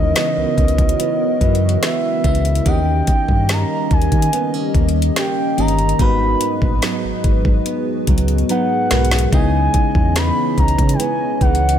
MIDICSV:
0, 0, Header, 1, 7, 480
1, 0, Start_track
1, 0, Tempo, 833333
1, 1532, Time_signature, 4, 2, 24, 8
1, 6790, End_track
2, 0, Start_track
2, 0, Title_t, "Soft synth lead"
2, 0, Program_c, 0, 80
2, 0, Note_on_c, 0, 75, 114
2, 1055, Note_off_c, 0, 75, 0
2, 1057, Note_on_c, 0, 76, 99
2, 1539, Note_on_c, 0, 79, 110
2, 1548, Note_off_c, 0, 76, 0
2, 2022, Note_on_c, 0, 82, 100
2, 2031, Note_off_c, 0, 79, 0
2, 2257, Note_off_c, 0, 82, 0
2, 2260, Note_on_c, 0, 80, 98
2, 2713, Note_off_c, 0, 80, 0
2, 2983, Note_on_c, 0, 79, 87
2, 3221, Note_on_c, 0, 82, 102
2, 3230, Note_off_c, 0, 79, 0
2, 3460, Note_on_c, 0, 83, 116
2, 3469, Note_off_c, 0, 82, 0
2, 3936, Note_off_c, 0, 83, 0
2, 4900, Note_on_c, 0, 78, 112
2, 5353, Note_off_c, 0, 78, 0
2, 5379, Note_on_c, 0, 80, 126
2, 5855, Note_on_c, 0, 83, 112
2, 5863, Note_off_c, 0, 80, 0
2, 6096, Note_on_c, 0, 82, 111
2, 6104, Note_off_c, 0, 83, 0
2, 6298, Note_on_c, 0, 79, 80
2, 6307, Note_off_c, 0, 82, 0
2, 6336, Note_on_c, 0, 80, 106
2, 6344, Note_off_c, 0, 79, 0
2, 6572, Note_off_c, 0, 80, 0
2, 6576, Note_on_c, 0, 78, 101
2, 6790, Note_off_c, 0, 78, 0
2, 6790, End_track
3, 0, Start_track
3, 0, Title_t, "Ambient pad"
3, 0, Program_c, 1, 92
3, 0, Note_on_c, 1, 52, 85
3, 0, Note_on_c, 1, 59, 76
3, 0, Note_on_c, 1, 66, 75
3, 0, Note_on_c, 1, 73, 91
3, 1508, Note_off_c, 1, 52, 0
3, 1508, Note_off_c, 1, 59, 0
3, 1508, Note_off_c, 1, 73, 0
3, 1512, Note_off_c, 1, 66, 0
3, 1532, Note_on_c, 1, 75, 94
3, 1533, Note_on_c, 1, 55, 85
3, 1533, Note_on_c, 1, 61, 75
3, 1533, Note_on_c, 1, 70, 76
3, 3433, Note_off_c, 1, 55, 0
3, 3433, Note_off_c, 1, 61, 0
3, 3433, Note_off_c, 1, 70, 0
3, 3452, Note_on_c, 1, 54, 84
3, 3453, Note_on_c, 1, 59, 77
3, 3453, Note_on_c, 1, 68, 75
3, 5349, Note_off_c, 1, 75, 0
3, 5353, Note_off_c, 1, 54, 0
3, 5371, Note_on_c, 1, 61, 78
3, 5373, Note_on_c, 1, 52, 87
3, 5373, Note_on_c, 1, 73, 97
3, 6790, Note_off_c, 1, 52, 0
3, 6790, Note_off_c, 1, 59, 0
3, 6790, Note_off_c, 1, 61, 0
3, 6790, Note_off_c, 1, 68, 0
3, 6790, Note_off_c, 1, 73, 0
3, 6790, End_track
4, 0, Start_track
4, 0, Title_t, "FM electric piano"
4, 0, Program_c, 2, 5
4, 0, Control_c, 2, 64, 127
4, 0, Note_on_c, 2, 49, 77
4, 0, Note_on_c, 2, 56, 68
4, 0, Note_on_c, 2, 59, 70
4, 0, Note_on_c, 2, 64, 72
4, 0, Note_on_c, 2, 70, 88
4, 0, Note_on_c, 2, 75, 84
4, 499, Note_off_c, 2, 49, 0
4, 501, Note_off_c, 2, 56, 0
4, 503, Note_off_c, 2, 59, 0
4, 505, Note_off_c, 2, 64, 0
4, 507, Note_off_c, 2, 70, 0
4, 1288, Note_on_c, 2, 49, 75
4, 1293, Note_on_c, 2, 56, 66
4, 1296, Note_on_c, 2, 59, 69
4, 1300, Note_on_c, 2, 64, 70
4, 1305, Note_on_c, 2, 76, 83
4, 1513, Note_off_c, 2, 49, 0
4, 1515, Note_off_c, 2, 56, 0
4, 1517, Note_off_c, 2, 59, 0
4, 1519, Note_off_c, 2, 64, 0
4, 1521, Note_off_c, 2, 76, 0
4, 1528, Note_on_c, 2, 51, 79
4, 1532, Note_on_c, 2, 58, 66
4, 1536, Note_on_c, 2, 61, 68
4, 1539, Control_c, 2, 64, 0
4, 1540, Note_on_c, 2, 67, 71
4, 1541, Note_off_c, 2, 75, 0
4, 1544, Note_on_c, 2, 75, 86
4, 1629, Control_c, 2, 64, 127
4, 2420, Note_off_c, 2, 51, 0
4, 2422, Note_off_c, 2, 58, 0
4, 2424, Note_off_c, 2, 61, 0
4, 2426, Note_off_c, 2, 67, 0
4, 2428, Note_off_c, 2, 75, 0
4, 3210, Note_on_c, 2, 51, 77
4, 3214, Note_on_c, 2, 58, 68
4, 3218, Note_on_c, 2, 61, 66
4, 3223, Note_on_c, 2, 67, 68
4, 3226, Note_on_c, 2, 75, 81
4, 3433, Note_off_c, 2, 51, 0
4, 3435, Note_off_c, 2, 58, 0
4, 3437, Note_off_c, 2, 61, 0
4, 3440, Note_off_c, 2, 67, 0
4, 3441, Note_off_c, 2, 75, 0
4, 3450, Note_on_c, 2, 44, 78
4, 3454, Note_on_c, 2, 56, 68
4, 3458, Note_on_c, 2, 59, 73
4, 3459, Control_c, 2, 64, 0
4, 3463, Note_on_c, 2, 66, 72
4, 3466, Note_on_c, 2, 71, 85
4, 3568, Control_c, 2, 64, 127
4, 4341, Note_off_c, 2, 44, 0
4, 4343, Note_off_c, 2, 56, 0
4, 4345, Note_off_c, 2, 59, 0
4, 4348, Note_off_c, 2, 66, 0
4, 4349, Note_off_c, 2, 71, 0
4, 5126, Note_on_c, 2, 44, 76
4, 5131, Note_on_c, 2, 56, 68
4, 5136, Note_on_c, 2, 70, 65
4, 5139, Note_on_c, 2, 66, 66
4, 5144, Note_on_c, 2, 71, 81
4, 5352, Note_off_c, 2, 44, 0
4, 5354, Note_off_c, 2, 56, 0
4, 5356, Note_off_c, 2, 70, 0
4, 5358, Note_off_c, 2, 66, 0
4, 5360, Note_off_c, 2, 71, 0
4, 5367, Note_on_c, 2, 49, 76
4, 5370, Note_on_c, 2, 56, 69
4, 5374, Note_on_c, 2, 59, 71
4, 5378, Note_on_c, 2, 64, 66
4, 5379, Control_c, 2, 64, 0
4, 5382, Note_on_c, 2, 75, 79
4, 5487, Control_c, 2, 64, 127
4, 6260, Note_off_c, 2, 49, 0
4, 6261, Note_off_c, 2, 56, 0
4, 6263, Note_off_c, 2, 59, 0
4, 6265, Note_off_c, 2, 64, 0
4, 6267, Note_off_c, 2, 75, 0
4, 6790, End_track
5, 0, Start_track
5, 0, Title_t, "Nylon-string guitar"
5, 0, Program_c, 3, 24
5, 0, Note_on_c, 3, 49, 85
5, 0, Note_on_c, 3, 52, 66
5, 0, Note_on_c, 3, 59, 63
5, 0, Note_on_c, 3, 63, 73
5, 85, Note_off_c, 3, 52, 0
5, 87, Note_off_c, 3, 59, 0
5, 92, Note_on_c, 3, 52, 65
5, 94, Note_on_c, 3, 59, 66
5, 95, Note_off_c, 3, 63, 0
5, 98, Note_on_c, 3, 63, 69
5, 564, Note_off_c, 3, 59, 0
5, 571, Note_on_c, 3, 59, 72
5, 803, Note_off_c, 3, 52, 0
5, 810, Note_on_c, 3, 52, 66
5, 1043, Note_off_c, 3, 52, 0
5, 1046, Note_off_c, 3, 59, 0
5, 1050, Note_on_c, 3, 52, 65
5, 1053, Note_on_c, 3, 59, 67
5, 1068, Note_off_c, 3, 63, 0
5, 1529, Note_off_c, 3, 52, 0
5, 1531, Note_off_c, 3, 49, 0
5, 1532, Note_on_c, 3, 51, 87
5, 1535, Note_on_c, 3, 67, 72
5, 1581, Note_off_c, 3, 59, 0
5, 2012, Note_on_c, 3, 58, 66
5, 2014, Note_off_c, 3, 67, 0
5, 2015, Note_on_c, 3, 61, 60
5, 2492, Note_off_c, 3, 61, 0
5, 2494, Note_on_c, 3, 59, 69
5, 2613, Note_off_c, 3, 59, 0
5, 2613, Note_on_c, 3, 61, 55
5, 2728, Note_off_c, 3, 58, 0
5, 2735, Note_on_c, 3, 58, 61
5, 2967, Note_off_c, 3, 58, 0
5, 2970, Note_off_c, 3, 61, 0
5, 2973, Note_on_c, 3, 58, 66
5, 2977, Note_on_c, 3, 61, 67
5, 2981, Note_on_c, 3, 67, 69
5, 3454, Note_off_c, 3, 61, 0
5, 3454, Note_on_c, 3, 44, 89
5, 3457, Note_on_c, 3, 63, 71
5, 3501, Note_off_c, 3, 58, 0
5, 3504, Note_off_c, 3, 67, 0
5, 3548, Note_off_c, 3, 51, 0
5, 3934, Note_on_c, 3, 54, 62
5, 3937, Note_on_c, 3, 59, 66
5, 3938, Note_off_c, 3, 63, 0
5, 3941, Note_on_c, 3, 63, 74
5, 4410, Note_off_c, 3, 59, 0
5, 4412, Note_on_c, 3, 59, 65
5, 4646, Note_off_c, 3, 54, 0
5, 4652, Note_on_c, 3, 54, 62
5, 4885, Note_off_c, 3, 54, 0
5, 4892, Note_on_c, 3, 54, 68
5, 4893, Note_off_c, 3, 59, 0
5, 4895, Note_on_c, 3, 59, 68
5, 4897, Note_off_c, 3, 63, 0
5, 4899, Note_on_c, 3, 63, 72
5, 5372, Note_on_c, 3, 49, 91
5, 5373, Note_off_c, 3, 44, 0
5, 5373, Note_off_c, 3, 63, 0
5, 5376, Note_on_c, 3, 63, 76
5, 5420, Note_off_c, 3, 54, 0
5, 5852, Note_on_c, 3, 52, 64
5, 5853, Note_off_c, 3, 59, 0
5, 5856, Note_on_c, 3, 59, 61
5, 5857, Note_off_c, 3, 63, 0
5, 5859, Note_on_c, 3, 63, 71
5, 6324, Note_off_c, 3, 59, 0
5, 6331, Note_on_c, 3, 59, 71
5, 6566, Note_off_c, 3, 52, 0
5, 6573, Note_on_c, 3, 52, 68
5, 6790, Note_off_c, 3, 49, 0
5, 6790, Note_off_c, 3, 52, 0
5, 6790, Note_off_c, 3, 59, 0
5, 6790, Note_off_c, 3, 63, 0
5, 6790, End_track
6, 0, Start_track
6, 0, Title_t, "Sub bass"
6, 0, Program_c, 4, 38
6, 0, Note_on_c, 4, 39, 84
6, 76, Note_off_c, 4, 39, 0
6, 214, Note_on_c, 4, 37, 47
6, 261, Note_off_c, 4, 37, 0
6, 334, Note_on_c, 4, 37, 92
6, 540, Note_off_c, 4, 37, 0
6, 813, Note_on_c, 4, 42, 88
6, 1020, Note_off_c, 4, 42, 0
6, 1292, Note_on_c, 4, 37, 97
6, 1499, Note_off_c, 4, 37, 0
6, 1532, Note_on_c, 4, 39, 107
6, 1739, Note_off_c, 4, 39, 0
6, 1893, Note_on_c, 4, 43, 91
6, 2100, Note_off_c, 4, 43, 0
6, 2254, Note_on_c, 4, 39, 95
6, 2357, Note_off_c, 4, 39, 0
6, 2373, Note_on_c, 4, 51, 101
6, 2476, Note_off_c, 4, 51, 0
6, 2735, Note_on_c, 4, 39, 88
6, 2941, Note_off_c, 4, 39, 0
6, 3215, Note_on_c, 4, 31, 99
6, 3421, Note_off_c, 4, 31, 0
6, 3454, Note_on_c, 4, 32, 104
6, 3660, Note_off_c, 4, 32, 0
6, 3813, Note_on_c, 4, 34, 88
6, 3916, Note_off_c, 4, 34, 0
6, 4057, Note_on_c, 4, 32, 49
6, 4104, Note_off_c, 4, 32, 0
6, 4172, Note_on_c, 4, 32, 104
6, 4379, Note_off_c, 4, 32, 0
6, 4652, Note_on_c, 4, 37, 91
6, 4859, Note_off_c, 4, 37, 0
6, 5134, Note_on_c, 4, 35, 95
6, 5340, Note_off_c, 4, 35, 0
6, 5372, Note_on_c, 4, 37, 106
6, 5579, Note_off_c, 4, 37, 0
6, 5732, Note_on_c, 4, 40, 83
6, 5939, Note_off_c, 4, 40, 0
6, 6093, Note_on_c, 4, 37, 99
6, 6196, Note_off_c, 4, 37, 0
6, 6214, Note_on_c, 4, 49, 92
6, 6317, Note_off_c, 4, 49, 0
6, 6574, Note_on_c, 4, 37, 97
6, 6780, Note_off_c, 4, 37, 0
6, 6790, End_track
7, 0, Start_track
7, 0, Title_t, "Drums"
7, 90, Note_on_c, 9, 42, 67
7, 92, Note_on_c, 9, 38, 114
7, 148, Note_off_c, 9, 42, 0
7, 150, Note_off_c, 9, 38, 0
7, 332, Note_on_c, 9, 36, 98
7, 333, Note_on_c, 9, 42, 42
7, 389, Note_off_c, 9, 36, 0
7, 391, Note_off_c, 9, 42, 0
7, 393, Note_on_c, 9, 42, 47
7, 451, Note_off_c, 9, 42, 0
7, 452, Note_on_c, 9, 36, 101
7, 452, Note_on_c, 9, 42, 64
7, 509, Note_off_c, 9, 36, 0
7, 510, Note_off_c, 9, 42, 0
7, 513, Note_on_c, 9, 42, 73
7, 570, Note_off_c, 9, 42, 0
7, 574, Note_on_c, 9, 42, 81
7, 632, Note_off_c, 9, 42, 0
7, 812, Note_on_c, 9, 36, 85
7, 813, Note_on_c, 9, 42, 37
7, 869, Note_off_c, 9, 36, 0
7, 871, Note_off_c, 9, 42, 0
7, 892, Note_on_c, 9, 42, 53
7, 950, Note_off_c, 9, 42, 0
7, 973, Note_on_c, 9, 42, 63
7, 1030, Note_off_c, 9, 42, 0
7, 1052, Note_on_c, 9, 38, 127
7, 1054, Note_on_c, 9, 42, 72
7, 1110, Note_off_c, 9, 38, 0
7, 1111, Note_off_c, 9, 42, 0
7, 1292, Note_on_c, 9, 36, 89
7, 1292, Note_on_c, 9, 42, 56
7, 1349, Note_off_c, 9, 36, 0
7, 1350, Note_off_c, 9, 42, 0
7, 1353, Note_on_c, 9, 42, 54
7, 1411, Note_off_c, 9, 42, 0
7, 1411, Note_on_c, 9, 42, 58
7, 1469, Note_off_c, 9, 42, 0
7, 1471, Note_on_c, 9, 42, 63
7, 1529, Note_off_c, 9, 42, 0
7, 1531, Note_on_c, 9, 36, 112
7, 1531, Note_on_c, 9, 42, 69
7, 1588, Note_off_c, 9, 42, 0
7, 1589, Note_off_c, 9, 36, 0
7, 1770, Note_on_c, 9, 42, 82
7, 1772, Note_on_c, 9, 36, 93
7, 1827, Note_off_c, 9, 42, 0
7, 1829, Note_off_c, 9, 36, 0
7, 1892, Note_on_c, 9, 36, 91
7, 1950, Note_off_c, 9, 36, 0
7, 2010, Note_on_c, 9, 42, 66
7, 2012, Note_on_c, 9, 38, 113
7, 2068, Note_off_c, 9, 42, 0
7, 2070, Note_off_c, 9, 38, 0
7, 2251, Note_on_c, 9, 42, 42
7, 2252, Note_on_c, 9, 36, 106
7, 2308, Note_off_c, 9, 42, 0
7, 2309, Note_off_c, 9, 36, 0
7, 2313, Note_on_c, 9, 42, 47
7, 2371, Note_off_c, 9, 42, 0
7, 2372, Note_on_c, 9, 36, 102
7, 2372, Note_on_c, 9, 42, 61
7, 2430, Note_off_c, 9, 36, 0
7, 2430, Note_off_c, 9, 42, 0
7, 2433, Note_on_c, 9, 42, 74
7, 2490, Note_off_c, 9, 42, 0
7, 2495, Note_on_c, 9, 42, 86
7, 2552, Note_off_c, 9, 42, 0
7, 2733, Note_on_c, 9, 36, 84
7, 2734, Note_on_c, 9, 42, 38
7, 2791, Note_off_c, 9, 36, 0
7, 2791, Note_off_c, 9, 42, 0
7, 2814, Note_on_c, 9, 42, 53
7, 2872, Note_off_c, 9, 42, 0
7, 2892, Note_on_c, 9, 42, 64
7, 2950, Note_off_c, 9, 42, 0
7, 2974, Note_on_c, 9, 38, 124
7, 2976, Note_on_c, 9, 42, 76
7, 3032, Note_off_c, 9, 38, 0
7, 3033, Note_off_c, 9, 42, 0
7, 3214, Note_on_c, 9, 42, 51
7, 3272, Note_off_c, 9, 42, 0
7, 3274, Note_on_c, 9, 42, 55
7, 3331, Note_off_c, 9, 42, 0
7, 3332, Note_on_c, 9, 42, 57
7, 3390, Note_off_c, 9, 42, 0
7, 3392, Note_on_c, 9, 42, 61
7, 3450, Note_off_c, 9, 42, 0
7, 3452, Note_on_c, 9, 36, 116
7, 3452, Note_on_c, 9, 42, 69
7, 3510, Note_off_c, 9, 36, 0
7, 3510, Note_off_c, 9, 42, 0
7, 3690, Note_on_c, 9, 42, 84
7, 3748, Note_off_c, 9, 42, 0
7, 3812, Note_on_c, 9, 36, 93
7, 3869, Note_off_c, 9, 36, 0
7, 3929, Note_on_c, 9, 42, 68
7, 3931, Note_on_c, 9, 38, 115
7, 3987, Note_off_c, 9, 42, 0
7, 3989, Note_off_c, 9, 38, 0
7, 4171, Note_on_c, 9, 36, 103
7, 4171, Note_on_c, 9, 42, 63
7, 4229, Note_off_c, 9, 36, 0
7, 4229, Note_off_c, 9, 42, 0
7, 4291, Note_on_c, 9, 36, 102
7, 4349, Note_off_c, 9, 36, 0
7, 4411, Note_on_c, 9, 42, 85
7, 4468, Note_off_c, 9, 42, 0
7, 4650, Note_on_c, 9, 42, 64
7, 4651, Note_on_c, 9, 36, 83
7, 4708, Note_off_c, 9, 42, 0
7, 4709, Note_off_c, 9, 36, 0
7, 4710, Note_on_c, 9, 42, 54
7, 4768, Note_off_c, 9, 42, 0
7, 4770, Note_on_c, 9, 42, 45
7, 4828, Note_off_c, 9, 42, 0
7, 4829, Note_on_c, 9, 42, 36
7, 4887, Note_off_c, 9, 42, 0
7, 4892, Note_on_c, 9, 42, 73
7, 4950, Note_off_c, 9, 42, 0
7, 5130, Note_on_c, 9, 46, 67
7, 5131, Note_on_c, 9, 38, 92
7, 5131, Note_on_c, 9, 42, 39
7, 5188, Note_off_c, 9, 46, 0
7, 5189, Note_off_c, 9, 38, 0
7, 5189, Note_off_c, 9, 42, 0
7, 5210, Note_on_c, 9, 42, 54
7, 5250, Note_on_c, 9, 38, 100
7, 5268, Note_off_c, 9, 42, 0
7, 5291, Note_on_c, 9, 42, 71
7, 5308, Note_off_c, 9, 38, 0
7, 5348, Note_off_c, 9, 42, 0
7, 5371, Note_on_c, 9, 36, 122
7, 5372, Note_on_c, 9, 42, 66
7, 5429, Note_off_c, 9, 36, 0
7, 5430, Note_off_c, 9, 42, 0
7, 5609, Note_on_c, 9, 42, 83
7, 5611, Note_on_c, 9, 36, 95
7, 5667, Note_off_c, 9, 42, 0
7, 5669, Note_off_c, 9, 36, 0
7, 5731, Note_on_c, 9, 36, 93
7, 5789, Note_off_c, 9, 36, 0
7, 5850, Note_on_c, 9, 42, 69
7, 5852, Note_on_c, 9, 38, 113
7, 5908, Note_off_c, 9, 42, 0
7, 5910, Note_off_c, 9, 38, 0
7, 6092, Note_on_c, 9, 36, 100
7, 6092, Note_on_c, 9, 42, 41
7, 6149, Note_off_c, 9, 36, 0
7, 6150, Note_off_c, 9, 42, 0
7, 6153, Note_on_c, 9, 42, 52
7, 6210, Note_off_c, 9, 42, 0
7, 6212, Note_on_c, 9, 36, 104
7, 6213, Note_on_c, 9, 42, 66
7, 6270, Note_off_c, 9, 36, 0
7, 6271, Note_off_c, 9, 42, 0
7, 6273, Note_on_c, 9, 42, 74
7, 6331, Note_off_c, 9, 42, 0
7, 6335, Note_on_c, 9, 42, 82
7, 6392, Note_off_c, 9, 42, 0
7, 6572, Note_on_c, 9, 36, 90
7, 6573, Note_on_c, 9, 42, 38
7, 6629, Note_off_c, 9, 36, 0
7, 6631, Note_off_c, 9, 42, 0
7, 6652, Note_on_c, 9, 42, 51
7, 6709, Note_off_c, 9, 42, 0
7, 6732, Note_on_c, 9, 42, 64
7, 6790, Note_off_c, 9, 42, 0
7, 6790, End_track
0, 0, End_of_file